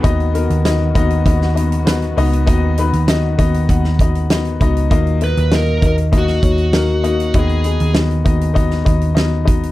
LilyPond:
<<
  \new Staff \with { instrumentName = "Lead electric guitar" } { \time 4/4 \key dis \phrygian \tempo 4 = 99 r1 | r1 | r8 b'8 ais'8 ais'8 fis'2 | gis'4 r2. | }
  \new Staff \with { instrumentName = "Grand piano" } { \time 4/4 \key dis \phrygian <b dis' fis' dis''>8 <b dis' fis' ais'>8 <b dis' fis' dis''>8 <b dis' fis' dis''>8 <b dis' fis' dis''>8 <b dis' fis' dis''>8 <b dis' fis' b'>8 <b dis' fis' dis''>8 | <b dis' fis' dis''>8 <b dis' fis' b'>8 <b dis' fis' dis''>8 <b dis' fis' dis''>8 <b dis' fis' fis''>8 <b dis' fis' dis''>8 <b dis' fis' dis''>8 <b dis' fis' dis''>8 | <ais dis' fis' dis''>8 <ais dis' fis' dis''>8 <ais dis' fis' dis''>8 <ais dis' fis' dis''>8 <ais dis' fis' dis''>8 <ais dis' fis' cis''>8 <ais dis' fis' ais'>8 <ais dis' fis' dis''>8 | <b dis' fis' dis''>8 <b dis' fis' gis'>8 <b dis' fis' dis''>8 <b dis' fis' dis''>8 <b dis' fis' dis''>8 <b dis' fis' dis''>8 <b dis' fis' dis''>8 <b dis' fis' dis''>8 | }
  \new Staff \with { instrumentName = "Grand piano" } { \clef bass \time 4/4 \key dis \phrygian dis4. r2 r8 | dis4. r2 r8 | ais,4. r2 r8 | dis4. r2 r8 | }
  \new Staff \with { instrumentName = "String section" } { \time 4/4 \key dis \phrygian <dis b fis'>1~ | <dis b fis'>1 | r1 | r1 | }
  \new Staff \with { instrumentName = "Picked electric bass" } { \clef bass \time 4/4 \key dis \phrygian dis,8. dis,8. dis,8 dis,4. cis,8 | dis,8. dis,8. dis,8 dis,4. cis,8 | dis,8. dis,8. dis,4 dis,4. | dis,8. dis,8. dis,4 dis,4. | }
  \new DrumStaff \with { instrumentName = "Drums" } \drummode { \time 4/4 <hh bd>16 hh16 hh16 hh16 <hh sn>8 <hh bd>16 hh16 <hh bd>16 sn16 hh16 hh16 <hh sn>16 hh16 hho16 hh16 | <hh bd>8 hh16 hh16 <hh sn>8 <hh bd>16 hh16 <hh bd>16 sn16 <hh bd>16 hh16 <hh sn>16 hh16 <hh bd>16 hh16 | <hh bd>16 hh16 hh16 hh16 sn8 <hh bd>16 hh16 <hh bd>16 <hh sn>16 <hh bd>16 hh16 sn8 hh16 hh16 | <hh bd>16 hh16 hh16 hh16 sn16 hh16 <hh bd>16 hh16 <hh bd>16 <hh sn>16 <hh bd>16 hh16 sn8 <hh bd>16 hh16 | }
>>